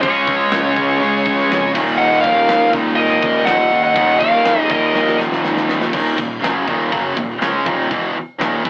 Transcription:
0.02 0.45 C#2 loud
0.02 0.98 C#3 loud
0.02 1.00 G#3 loud
0.02 1.01 C#4 loud
0.02 1.70 G#4 medium
0.02 1.70 C#5 medium
0.02 kick loud
0.02 open hi-hat medium
0.27 kick medium
0.27 open hi-hat medium
0.51 0.72 C#2 loud
0.51 snare loud
0.51 open hi-hat medium
0.76 0.97 C#2 medium
0.76 kick medium
0.76 open hi-hat medium
1.00 1.42 C#2 loud
1.00 1.73 C#3 medium
1.00 1.73 G#3 medium
1.00 1.74 C#4 medium
1.00 open hi-hat medium
1.26 kick medium
1.26 open hi-hat medium
1.39 snare soft
1.49 1.70 F2 medium
1.49 snare loud
1.49 open hi-hat medium
1.73 1.96 D#1 loud
1.73 2.74 D#2 loud
1.73 2.72 A#2 loud
1.73 2.72 D#3 loud
1.73 kick loud
1.73 crash loud
1.98 2.20 D#1 loud
1.98 2.22 D#5 medium
1.98 2.21 F#5 loud
2.21 2.45 D#1 loud
2.21 2.69 A#4 medium
2.21 2.68 F5 loud
2.21 kick medium
2.21 open hi-hat medium
2.48 2.90 C#2 loud
2.48 snare loud
2.48 open hi-hat loud
2.72 3.94 D#2 medium
2.72 3.70 A#2 medium
2.72 3.97 D#3 medium
2.72 kick medium
2.72 open hi-hat medium
2.96 3.19 G#1 loud
2.96 3.43 A#4 medium
2.96 3.47 D#5 loud
2.96 open hi-hat loud
3.10 snare soft
3.22 3.43 C#2 loud
3.22 kick medium
3.22 open hi-hat medium
3.45 3.68 C#2 medium
3.45 3.81 D#5 medium
3.45 3.83 F#5 loud
3.45 snare loud
3.45 open hi-hat medium
3.71 3.93 C#2 medium
3.71 open hi-hat medium
3.84 4.18 D#5 medium
3.84 4.18 F#5 medium
3.95 4.38 D#1 loud
3.95 4.92 D#2 medium
3.95 4.93 A#2 loud
3.95 4.94 D#3 loud
3.95 kick loud
3.95 open hi-hat medium
4.20 4.67 A#4 medium
4.20 4.71 F5 loud
4.20 kick medium
4.20 open hi-hat medium
4.45 4.66 D#1 loud
4.45 snare loud
4.45 open hi-hat medium
4.70 4.91 D#1 medium
4.70 5.16 A#4 medium
4.70 5.16 D#5 medium
4.70 kick medium
4.70 open hi-hat medium
4.93 5.37 D#1 loud
4.93 5.91 D#2 medium
4.93 5.92 A#2 medium
4.93 5.92 D#3 medium
4.93 snare medium
5.07 snare medium
5.20 snare medium
5.32 snare medium
5.45 5.86 C#2 medium
5.45 snare medium
5.57 snare medium
5.69 snare loud
5.81 snare loud
5.92 6.16 D#1 loud
5.92 6.16 D#2 medium
5.92 6.16 A#2 medium
5.92 6.17 D#3 loud
5.92 kick loud
5.92 crash loud
6.17 6.41 D#1 medium
6.17 6.37 D#2 medium
6.17 6.37 A#2 medium
6.17 kick medium
6.17 open hi-hat medium
6.42 6.65 F#1 loud
6.42 6.66 F#2 medium
6.42 6.66 C#3 medium
6.42 6.66 F#3 loud
6.42 snare loud
6.42 open hi-hat medium
6.67 6.90 D#1 medium
6.67 6.91 D#2 loud
6.67 6.91 A#2 medium
6.67 6.91 D#3 loud
6.67 kick loud
6.67 open hi-hat medium
6.91 7.15 F#1 medium
6.91 7.15 F#2 medium
6.91 7.15 C#3 loud
6.91 7.16 F#3 loud
6.91 kick loud
6.91 open hi-hat medium
7.17 7.39 D#1 medium
7.17 7.36 D#2 medium
7.17 7.36 A#2 medium
7.17 kick loud
7.17 open hi-hat medium
7.41 7.64 C#2 medium
7.41 7.65 C#3 loud
7.41 7.65 G#3 loud
7.41 7.65 C#4 loud
7.41 snare loud
7.41 open hi-hat medium
7.65 7.89 D#1 medium
7.65 7.89 D#2 medium
7.65 7.89 A#2 loud
7.65 7.90 D#3 loud
7.65 kick loud
7.65 open hi-hat medium
7.90 8.14 E1 medium
7.90 8.14 E2 loud
7.90 8.14 B2 medium
7.90 8.14 E3 loud
7.90 kick loud
7.90 open hi-hat medium
8.16 muted fingered electric bass stroke soft
8.16 muted distorted electric guitar stroke medium
8.16 open hi-hat soft
8.40 8.63 D#1 loud
8.40 8.64 D#2 loud
8.40 8.64 A#2 medium
8.40 8.64 D#3 loud
8.40 snare loud
8.40 open hi-hat medium
8.65 8.70 E1 medium
8.65 8.70 E2 medium
8.65 8.70 B2 loud
8.65 8.70 E3 loud
8.65 kick loud
8.65 open hi-hat medium

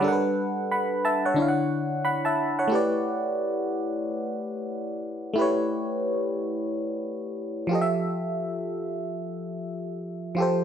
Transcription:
0.00 1.33 G3 medium
0.00 1.34 D4 medium
0.00 0.23 C#5 medium
0.04 1.35 A4 medium
0.04 0.13 A#4 medium
0.04 0.39 F#5 medium
0.13 1.39 B4 medium
0.71 1.03 F#5 medium
0.71 1.03 B5 medium
1.05 1.24 E5 medium
1.05 1.24 A5 medium
1.25 1.39 C#5 medium
1.25 1.47 F#5 medium
1.34 2.66 D3 medium
1.34 2.67 D4 medium
1.34 2.68 E4 medium
1.40 2.04 C#5 medium
1.40 1.48 F5 medium
1.48 2.04 F#5 medium
2.05 2.24 F#5 medium
2.05 2.24 B5 medium
2.25 2.57 E5 medium
2.25 2.56 A5 medium
2.59 2.90 C#5 medium
2.59 2.90 F#5 medium
2.68 5.32 A3 medium
2.68 5.33 E4 medium
2.72 5.34 G4 medium
2.72 5.35 B4 medium
2.72 5.36 D5 medium
5.34 7.65 A3 medium
5.34 7.66 E4 medium
5.38 7.67 G4 medium
5.38 7.68 B4 medium
5.38 7.69 C#5 medium
7.67 10.32 F3 medium
7.67 10.33 F4 medium
7.71 10.34 G4 medium
7.71 10.35 A4 medium
7.71 7.81 D#5 medium
7.82 10.39 E5 medium
10.35 10.64 F3 medium
10.35 10.64 F4 medium
10.35 10.64 G4 medium
10.40 10.64 A4 medium
10.40 10.64 C5 medium

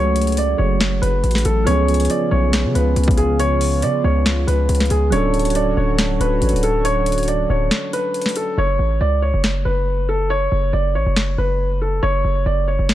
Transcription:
0.00 0.55 C#2 loud
0.00 1.61 F#3 medium
0.00 1.63 F#3 medium
0.00 1.62 A3 medium
0.00 1.63 A3 medium
0.00 1.63 C#4 medium
0.00 1.64 F#4 medium
0.00 1.63 G#4 medium
0.00 0.35 C#5 loud
0.16 closed hi-hat medium
0.16 open hi-hat medium
0.21 closed hi-hat medium
0.27 closed hi-hat medium
0.32 closed hi-hat soft
0.37 0.57 D5 medium
0.37 closed hi-hat medium
0.58 1.00 F#1 loud
0.58 0.99 C#5 medium
0.81 finger snap medium
0.81 snare loud
1.02 1.23 F#1 loud
1.02 1.42 B4 medium
1.02 closed hi-hat medium
1.24 1.44 A1 loud
1.24 closed hi-hat soft
1.31 closed hi-hat medium
1.35 snare medium
1.35 closed hi-hat medium
1.45 1.66 A1 loud
1.45 1.65 A4 medium
1.45 closed hi-hat medium
1.64 2.08 C#2 loud
1.64 5.09 C#3 medium
1.64 5.07 F3 medium
1.64 5.08 B3 medium
1.64 5.09 B3 medium
1.64 5.09 C#4 medium
1.64 5.09 F4 medium
1.64 2.07 C#5 loud
1.64 closed hi-hat medium
1.70 5.10 G#4 medium
1.88 closed hi-hat soft
1.94 closed hi-hat medium
2.00 closed hi-hat medium
2.05 closed hi-hat medium
2.10 2.30 D5 medium
2.10 closed hi-hat medium
2.31 2.66 B1 loud
2.31 2.72 C#5 medium
2.53 finger snap medium
2.53 snare loud
2.53 closed hi-hat medium
2.65 2.74 C#3 loud
2.75 2.95 C#2 loud
2.75 3.15 B4 medium
2.75 closed hi-hat medium
2.96 3.84 C#2 loud
2.96 closed hi-hat medium
3.04 closed hi-hat medium
3.08 kick medium
3.08 closed hi-hat medium
3.17 3.37 G#4 medium
3.17 closed hi-hat medium
3.40 3.80 C#5 loud
3.40 closed hi-hat medium
3.61 open hi-hat medium
3.82 4.03 C#3 loud
3.82 4.03 D5 medium
3.82 closed hi-hat medium
4.04 4.46 C#2 loud
4.04 4.45 C#5 medium
4.26 finger snap medium
4.26 snare loud
4.47 4.68 C#2 loud
4.47 4.88 B4 medium
4.47 closed hi-hat medium
4.69 4.90 C#2 loud
4.69 closed hi-hat medium
4.75 closed hi-hat medium
4.80 snare medium
4.80 closed hi-hat medium
4.86 closed hi-hat soft
4.90 5.11 C#2 loud
4.90 5.10 G#4 medium
4.90 closed hi-hat medium
5.10 5.74 D1 loud
5.10 8.54 D3 medium
5.10 8.53 F#3 medium
5.10 8.54 C#4 medium
5.10 8.55 D4 medium
5.10 8.54 F#4 medium
5.10 8.54 C#5 medium
5.10 5.53 C#5 loud
5.10 closed hi-hat medium
5.16 8.56 A4 medium
5.34 closed hi-hat soft
5.39 closed hi-hat medium
5.45 closed hi-hat medium
5.50 closed hi-hat medium
5.55 5.75 D5 medium
5.55 closed hi-hat medium
5.77 6.18 D1 loud
5.77 6.17 C#5 medium
5.98 finger snap medium
5.98 snare loud
5.98 closed hi-hat medium
6.20 6.41 D1 loud
6.20 6.61 B4 medium
6.20 closed hi-hat medium
6.42 6.53 A1 loud
6.42 closed hi-hat medium
6.49 closed hi-hat medium
6.53 7.46 D1 loud
6.53 closed hi-hat medium
6.63 6.83 A4 medium
6.63 closed hi-hat medium
6.85 7.25 C#5 loud
6.85 closed hi-hat medium
7.06 closed hi-hat medium
7.06 open hi-hat medium
7.12 closed hi-hat medium
7.18 closed hi-hat medium
7.23 closed hi-hat soft
7.28 7.48 D5 medium
7.28 closed hi-hat medium
7.50 7.70 D1 loud
7.50 7.90 C#5 medium
7.71 finger snap medium
7.71 snare loud
7.93 8.34 B4 medium
7.93 closed hi-hat medium
8.14 closed hi-hat soft
8.22 closed hi-hat medium
8.26 snare medium
8.26 closed hi-hat medium
8.36 8.56 A4 medium
8.36 closed hi-hat medium
8.58 8.78 F#1 loud
8.58 8.98 C#5 loud
8.79 9.00 A1 loud
9.01 9.32 C#2 loud
9.01 9.20 D5 medium
9.22 9.63 C#5 medium
9.34 9.64 F#1 loud
9.44 finger snap medium
9.44 snare loud
9.65 10.48 F#1 loud
9.65 10.06 B4 medium
10.09 10.28 A4 medium
10.30 10.71 C#5 loud
10.52 10.72 F#1 loud
10.73 10.96 F#1 loud
10.73 10.93 D5 medium
10.95 11.06 A1 loud
10.95 11.36 C#5 medium
11.06 11.37 F#1 loud
11.16 finger snap medium
11.16 snare loud
11.38 12.00 F#1 loud
11.38 11.79 B4 medium
11.82 12.01 A4 medium
12.03 12.24 F#1 loud
12.03 12.43 C#5 loud
12.24 12.45 F#1 loud
12.46 12.78 F#1 loud
12.46 12.66 D5 medium
12.68 12.94 C#5 medium
12.79 12.94 F#1 loud
12.89 finger snap medium
12.89 snare loud

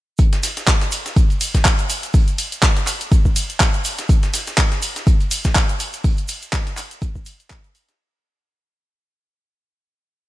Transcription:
0.18 kick loud
0.18 closed hi-hat medium
0.18 shaker soft
0.33 snare soft
0.33 closed hi-hat medium
0.33 shaker soft
0.43 snare soft
0.43 closed hi-hat medium
0.43 open hi-hat loud
0.43 ride medium
0.43 shaker medium
0.57 snare soft
0.57 closed hi-hat medium
0.57 shaker soft
0.68 kick loud
0.68 snare loud
0.68 clap loud
0.68 closed hi-hat medium
0.68 shaker soft
0.81 snare medium
0.81 closed hi-hat soft
0.81 shaker soft
0.92 closed hi-hat medium
0.92 open hi-hat medium
0.92 ride medium
0.92 shaker medium
1.06 snare soft
1.06 closed hi-hat medium
1.06 shaker soft
1.16 kick loud
1.16 closed hi-hat medium
1.16 shaker soft
1.30 closed hi-hat soft
1.30 shaker soft
1.41 closed hi-hat medium
1.41 open hi-hat loud
1.41 ride medium
1.41 shaker medium
1.55 kick medium
1.55 snare medium
1.55 closed hi-hat medium
1.55 shaker soft
1.65 kick loud
1.65 snare loud
1.65 clap loud
1.65 closed hi-hat medium
1.65 shaker medium
1.79 closed hi-hat medium
1.79 shaker soft
1.90 closed hi-hat medium
1.90 open hi-hat medium
1.90 ride medium
1.90 shaker loud
2.03 closed hi-hat soft
2.03 closed hi-hat medium
2.03 shaker soft
2.14 kick loud
2.14 open hi-hat medium
2.14 shaker medium
2.28 closed hi-hat medium
2.28 shaker soft
2.38 closed hi-hat medium
2.38 open hi-hat loud
2.38 ride medium
2.38 shaker loud
2.52 closed hi-hat medium
2.52 shaker soft
2.63 kick loud
2.63 snare loud
2.63 clap loud
2.63 closed hi-hat medium
2.63 shaker medium
2.77 snare soft
2.77 closed hi-hat soft
2.77 shaker soft
2.87 clap soft
2.87 closed hi-hat medium
2.87 open hi-hat loud
2.87 ride medium
2.87 shaker loud
3.00 closed hi-hat medium
3.00 shaker soft
3.12 kick loud
3.12 closed hi-hat medium
3.12 shaker soft
3.25 kick medium
3.25 shaker soft
3.36 closed hi-hat medium
3.36 open hi-hat loud
3.36 ride medium
3.36 shaker medium
3.50 closed hi-hat medium
3.50 shaker soft
3.60 kick loud
3.60 snare loud
3.60 clap loud
3.60 closed hi-hat medium
3.60 shaker medium
3.74 closed hi-hat medium
3.74 shaker soft
3.85 closed hi-hat medium
3.85 open hi-hat loud
3.85 ride medium
3.85 shaker loud
3.98 snare medium
3.98 closed hi-hat medium
3.98 shaker soft
4.09 kick loud
4.09 closed hi-hat medium
4.09 shaker medium
4.23 snare soft
4.23 closed hi-hat medium
4.23 shaker soft
4.34 snare soft
4.34 closed hi-hat medium
4.34 open hi-hat loud
4.34 ride medium
4.34 shaker loud
4.47 snare soft
4.47 closed hi-hat medium
4.47 shaker soft
4.58 kick loud
4.58 snare loud
4.58 clap loud
4.58 closed hi-hat medium
4.58 shaker medium
4.72 snare medium
4.72 closed hi-hat soft
4.72 shaker soft
4.82 closed hi-hat medium
4.82 open hi-hat loud
4.82 ride medium
4.82 shaker loud
4.96 snare soft
4.96 closed hi-hat medium
4.96 shaker soft
5.07 kick loud
5.07 closed hi-hat medium
5.07 shaker soft
5.20 closed hi-hat soft
5.20 shaker soft
5.31 closed hi-hat medium
5.31 open hi-hat loud
5.31 ride medium
5.31 shaker loud
5.44 kick medium
5.44 snare medium
5.44 closed hi-hat medium
5.44 shaker soft
5.55 kick loud
5.55 snare loud
5.55 clap loud
5.55 closed hi-hat medium
5.55 shaker medium
5.69 closed hi-hat medium
5.69 shaker soft
5.80 closed hi-hat medium
5.80 open hi-hat loud
5.80 ride medium
5.80 shaker medium
5.93 closed hi-hat soft
5.93 closed hi-hat medium
5.93 shaker soft
6.04 kick loud
6.04 open hi-hat medium
6.04 shaker medium
6.17 closed hi-hat medium
6.17 shaker soft
6.28 closed hi-hat medium
6.28 open hi-hat loud
6.28 ride medium
6.28 shaker medium
6.42 closed hi-hat medium
6.42 shaker soft
6.53 kick loud
6.53 snare loud
6.53 clap loud
6.53 closed hi-hat medium
6.53 shaker medium
6.67 snare soft
6.67 closed hi-hat soft
6.67 shaker soft
6.77 clap soft
6.77 closed hi-hat medium
6.77 open hi-hat loud
6.77 ride medium
6.77 shaker loud
6.91 closed hi-hat medium
6.91 shaker soft
7.02 kick loud
7.02 closed hi-hat medium
7.02 shaker medium
7.15 kick medium
7.15 shaker soft
7.26 closed hi-hat medium
7.26 open hi-hat loud
7.26 ride medium
7.26 shaker loud
7.40 closed hi-hat medium
7.40 shaker soft
7.50 kick loud
7.50 snare loud
7.50 clap loud
7.50 closed hi-hat medium
7.50 shaker medium
7.64 closed hi-hat medium
7.64 shaker soft
7.75 closed hi-hat medium
7.75 open hi-hat loud
7.75 ride medium
7.75 shaker medium
7.88 snare medium
7.88 closed hi-hat medium
7.88 shaker soft

